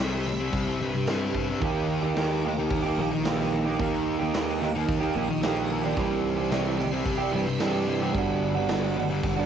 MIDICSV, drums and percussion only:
0, 0, Header, 1, 2, 480
1, 0, Start_track
1, 0, Tempo, 544465
1, 1425, Time_signature, 4, 2, 24, 8
1, 8339, End_track
2, 0, Start_track
2, 0, Title_t, "Drums"
2, 233, Note_on_c, 9, 38, 37
2, 321, Note_off_c, 9, 38, 0
2, 465, Note_on_c, 9, 49, 71
2, 466, Note_on_c, 9, 36, 115
2, 553, Note_off_c, 9, 49, 0
2, 555, Note_off_c, 9, 36, 0
2, 942, Note_on_c, 9, 49, 65
2, 948, Note_on_c, 9, 38, 117
2, 1030, Note_off_c, 9, 49, 0
2, 1037, Note_off_c, 9, 38, 0
2, 1185, Note_on_c, 9, 36, 79
2, 1274, Note_off_c, 9, 36, 0
2, 1425, Note_on_c, 9, 49, 66
2, 1426, Note_on_c, 9, 36, 123
2, 1513, Note_off_c, 9, 49, 0
2, 1514, Note_off_c, 9, 36, 0
2, 1905, Note_on_c, 9, 49, 59
2, 1911, Note_on_c, 9, 38, 105
2, 1993, Note_off_c, 9, 49, 0
2, 1999, Note_off_c, 9, 38, 0
2, 2381, Note_on_c, 9, 49, 64
2, 2385, Note_on_c, 9, 36, 121
2, 2469, Note_off_c, 9, 49, 0
2, 2473, Note_off_c, 9, 36, 0
2, 2864, Note_on_c, 9, 49, 70
2, 2870, Note_on_c, 9, 38, 113
2, 2952, Note_off_c, 9, 49, 0
2, 2958, Note_off_c, 9, 38, 0
2, 2992, Note_on_c, 9, 38, 30
2, 3080, Note_off_c, 9, 38, 0
2, 3343, Note_on_c, 9, 49, 72
2, 3347, Note_on_c, 9, 36, 116
2, 3432, Note_off_c, 9, 49, 0
2, 3435, Note_off_c, 9, 36, 0
2, 3826, Note_on_c, 9, 49, 69
2, 3832, Note_on_c, 9, 38, 120
2, 3914, Note_off_c, 9, 49, 0
2, 3921, Note_off_c, 9, 38, 0
2, 4077, Note_on_c, 9, 38, 34
2, 4165, Note_off_c, 9, 38, 0
2, 4307, Note_on_c, 9, 36, 121
2, 4307, Note_on_c, 9, 49, 72
2, 4395, Note_off_c, 9, 36, 0
2, 4395, Note_off_c, 9, 49, 0
2, 4786, Note_on_c, 9, 49, 74
2, 4793, Note_on_c, 9, 38, 124
2, 4875, Note_off_c, 9, 49, 0
2, 4881, Note_off_c, 9, 38, 0
2, 5262, Note_on_c, 9, 49, 67
2, 5265, Note_on_c, 9, 36, 127
2, 5350, Note_off_c, 9, 49, 0
2, 5353, Note_off_c, 9, 36, 0
2, 5746, Note_on_c, 9, 49, 61
2, 5752, Note_on_c, 9, 38, 118
2, 5834, Note_off_c, 9, 49, 0
2, 5840, Note_off_c, 9, 38, 0
2, 5992, Note_on_c, 9, 38, 35
2, 6080, Note_off_c, 9, 38, 0
2, 6221, Note_on_c, 9, 49, 68
2, 6222, Note_on_c, 9, 36, 115
2, 6310, Note_off_c, 9, 36, 0
2, 6310, Note_off_c, 9, 49, 0
2, 6698, Note_on_c, 9, 49, 72
2, 6705, Note_on_c, 9, 38, 120
2, 6787, Note_off_c, 9, 49, 0
2, 6793, Note_off_c, 9, 38, 0
2, 7181, Note_on_c, 9, 36, 108
2, 7184, Note_on_c, 9, 49, 65
2, 7269, Note_off_c, 9, 36, 0
2, 7272, Note_off_c, 9, 49, 0
2, 7657, Note_on_c, 9, 49, 72
2, 7663, Note_on_c, 9, 38, 117
2, 7745, Note_off_c, 9, 49, 0
2, 7751, Note_off_c, 9, 38, 0
2, 8141, Note_on_c, 9, 36, 119
2, 8142, Note_on_c, 9, 49, 70
2, 8229, Note_off_c, 9, 36, 0
2, 8230, Note_off_c, 9, 49, 0
2, 8339, End_track
0, 0, End_of_file